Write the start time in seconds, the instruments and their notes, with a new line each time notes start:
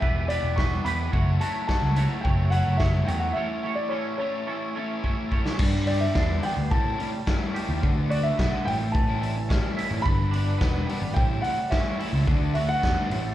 0.00 picked electric bass E1, overdriven electric guitar E3 B3 E4 G4, clean electric guitar B4, upright piano E5, kick
0.28 overdriven electric guitar E3 B3 E4 G4, clean electric guitar B4, upright piano D5, closed hi-hat
0.43 picked electric bass E1
0.56 overdriven electric guitar E3 B3 E4 G4, clean electric guitar B4, upright piano C#6, kick, snare
0.84 picked electric bass E2, overdriven electric guitar E3 B3 E4 G4, clean electric guitar B4, upright piano B5, closed hi-hat
1.12 picked electric bass F#1, overdriven electric guitar F#3 A3 C#4 F#4, clean electric guitar E4 C#5, kick
1.41 overdriven electric guitar F#3 A3 C#4 F#4, clean electric guitar E4 C#5, upright piano A5, closed hi-hat
1.67 overdriven electric guitar F#3 A3 C#4 F#4, clean electric guitar E4 C#5, upright piano A5, kick, snare
1.82 picked electric bass C#2
1.96 overdriven electric guitar F#3 A3 C#4 F#4, clean electric guitar E4 C#5, closed hi-hat
2.21 picked electric bass F#1, overdriven electric guitar F#3 A3 C#4 F#4, clean electric guitar E4, upright piano G5, kick
2.25 clean electric guitar C#5
2.50 overdriven electric guitar F#3 A3 C#4 F#4, clean electric guitar E4 C#5, upright piano F#5, closed hi-hat
2.66 picked electric bass F#1
2.77 overdriven electric guitar F#3 A3 C#4 F#4, clean electric guitar E4 C#5, upright piano E5, kick, snare
3.05 picked electric bass E2, overdriven electric guitar F#3 A3 C#4 F#4, clean electric guitar E4 C#5, upright piano G5, closed hi-hat
3.19 upright piano F#5
3.33 overdriven electric guitar A2 E3 A3 C#4 E4, clean electric guitar A4 C#5, upright piano E5
3.64 overdriven electric guitar A2 E3 A3 C#4 E4, clean electric guitar A4 C#5
3.75 upright piano D5
3.89 overdriven electric guitar A2 E3 A3, clean electric guitar A4 C#5, upright piano C#5
3.93 overdriven electric guitar C#4 E4
4.18 overdriven electric guitar A2 E3 A3 C#4, clean electric guitar A4 C#5, upright piano C#5
4.22 overdriven electric guitar E4
4.48 overdriven electric guitar A2 E3 A3 C#4 E4, clean electric guitar A4 C#5
4.76 overdriven electric guitar A2 E3 A3 C#4 E4, clean electric guitar A4 C#5
5.04 overdriven electric guitar A2 E3 A3 C#4 E4, clean electric guitar A4 C#5, kick
5.31 overdriven electric guitar A2 E3 A3 C#4 E4, clean electric guitar A4 C#5, kick
5.46 snare
5.57 overdriven electric guitar G2 D3 G3 B3 D4, picked electric bass G2, string machine G4 B4 D5 B5, kick, crash
5.85 overdriven electric guitar D3 G3 B3 D4, clean electric guitar G4, upright piano D5, open hi-hat
6.00 upright piano E5
6.14 picked electric bass E2, overdriven electric guitar G2 D3 G3 B3 D4, kick, snare
6.42 overdriven electric guitar D3 G3 B3 D4, upright piano G5, open hi-hat
6.57 picked electric bass D2, muted overdriven electric guitar stroke
6.71 overdriven electric guitar A2 E3 G3 C#4 E4, picked electric bass A2, string machine C#5 E5 A5, upright piano A5, kick
6.85 overdriven electric guitar G3 C#4 E4
6.97 overdriven electric guitar E3 G3 C#4 E4, open hi-hat
7.12 muted overdriven electric guitar stroke
7.27 overdriven electric guitar A2 E3 G3 C#4 E4, kick, snare
7.54 overdriven electric guitar E3 G3 C#4 E4, clean electric guitar G4, open hi-hat
7.68 picked electric bass D#2, overdriven electric guitar G3 C#4 E4
7.82 picked electric bass D2, overdriven electric guitar D3 A3 D4 F#4, string machine F#4 B4 D5 A5, kick
8.10 overdriven electric guitar D3 A3 D4 F#4, upright piano D5, open hi-hat
8.23 upright piano E5
8.37 picked electric bass B1, overdriven electric guitar D3 A3 D4 F#4, clean electric guitar B3, kick, snare
8.65 picked electric bass A1, overdriven electric guitar A2 E3 G3 C#4 E4, string machine G4 C#5 E5, upright piano G5, open hi-hat
8.81 muted overdriven electric guitar stroke
8.92 clean electric guitar E3, upright piano A5, kick
9.08 overdriven electric guitar G3 C#4 E4
9.22 overdriven electric guitar E3 G3 C#4 E4, open hi-hat
9.36 muted overdriven electric guitar stroke
9.49 overdriven electric guitar A2 E3 G3 C#4 E4, kick, snare
9.77 overdriven electric guitar E3 G3 C#4 E4, open hi-hat
9.90 picked electric bass A1, overdriven electric guitar G3 C#4 E4
10.02 picked electric bass G1, overdriven electric guitar G2 D3 G3 B3 D4, string machine B4 D5 B5, upright piano B5, kick
10.31 overdriven electric guitar D3 G3 B3, clean electric guitar D4, open hi-hat
10.36 overdriven electric guitar D4
10.58 picked electric bass E1, overdriven electric guitar G2 D3 G3, clean electric guitar B3, kick, snare
10.62 overdriven electric guitar B3 D4
10.88 overdriven electric guitar D3 G3 B3 D4, open hi-hat
11.01 picked electric bass G#1, muted overdriven electric guitar stroke
11.14 picked electric bass A1, overdriven electric guitar A2 E3 G3 C#4 E4, string machine C#5 E5 A5, upright piano G5, kick
11.28 overdriven electric guitar G3 C#4 E4
11.42 overdriven electric guitar E3 G3 C#4 E4, upright piano F#5, open hi-hat
11.58 muted overdriven electric guitar stroke
11.70 overdriven electric guitar A2 E3 G3 C#4 E4, upright piano E5, kick, snare
11.99 overdriven electric guitar E3 G3 C#4 E4, open hi-hat
12.13 picked electric bass C#2, overdriven electric guitar G3 C#4 E4
12.27 picked electric bass D2, overdriven electric guitar D3 A3 D4 F#4, string machine F#4 B4 D5, kick
12.54 overdriven electric guitar D3 A3 D4, upright piano E5, open hi-hat
12.59 overdriven electric guitar F#4
12.69 upright piano F#5
12.82 picked electric bass E2, overdriven electric guitar D3 A3 D4 F#4, clean electric guitar B3, kick, snare
13.10 picked electric bass A1, overdriven electric guitar A2 E3 G3 C#4 E4, string machine G4 C#5 E5, open hi-hat
13.25 muted overdriven electric guitar stroke